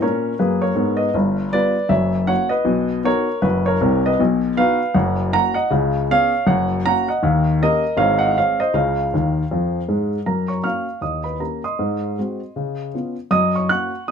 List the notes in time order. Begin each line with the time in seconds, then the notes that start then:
0.01 A#2 C#4 A#4 C#5
0.39 F#2 A#3 G#4 B4
0.62 A#4 C#5
0.75 G#2 B3
0.97 B4 D#5
1.14 G1 G2
1.52 G3 B3 F4 B4 D5
1.89 F#1 F#2 C#5 E5
2.27 A#3 C#4 F#4 C#5 F#5
2.49 B4 D#5
2.65 B1 B2
3.04 B3 D#4 F#4 A#4 C#5
3.42 F#1 F#2 F#4 B4
3.66 A#4 C#5
3.81 C2 C3
4.06 B4 D#5
4.19 B1 B2
4.57 B3 D#4 F#4 B4 F5
4.94 F#1 F#2 C#5 F#5
5.33 A#3 C#4 F#4 F#5 A#5
5.54 D#5 F#5
5.71 C#2 C#3
6.11 B3 C#4 G#4 C#5 F5
6.47 F#1 F#2 C#5 F#5
6.86 A#3 C#4 F#4 F#5 A#5
7.08 D#5 F#5
7.22 D#2 D#3
7.61 A#3 C#4 G4 A#4 D#5
7.97 G#1 G#2 C#5 F5
8.19 D#5 F#5
8.37 G#3 C4 G#4 C#5 F5
8.60 C5 D#5
8.74 C#2 C#3 C#5 F5
9.14 D#2 D#3
9.51 F2 F3
9.88 G#2 G#3
10.26 F#2 A#4 A#5
10.48 C#5 C#6
10.63 A#3 C#4 F#4 F5 C#6 F6
11.01 D#2 D#5 D#6
11.24 B4 B5
11.39 A#3 C#4 G4 A#4 A#5
11.64 D#5 C6 D#6
11.79 G#2
12.18 G#3 C4 F#4
12.56 C#3
12.94 B3 C#4 F4
13.31 F#2 D#5 D#6
13.56 C#5 C#6
13.69 A#3 C#4 F#4 F#5 C#6 F#6
14.08 B2 D#6